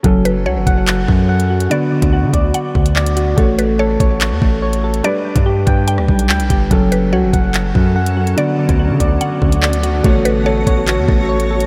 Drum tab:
HH |x-x---x-x----x-x|x--x--x-x--x-xx-|x-x---x-x----x-x|x--x--x-x--x-xx-|
CP |--------x-------|------------x---|--------x-------|------------x---|
SD |----------------|----------------|----------------|---------r------|
BD |o-----o---o-----|---o--o---o-----|o-----o---o-----|---o--o---o---o-|

HH |x-x---x-x----x-x|x--x--x-x--x-xx-|x-x---x-x----x-x|
CP |--------x-------|------------x---|--------x-------|
SD |----------------|----------------|----------------|
BD |o-----o---o-----|---o--o---o-----|o-----o---o-----|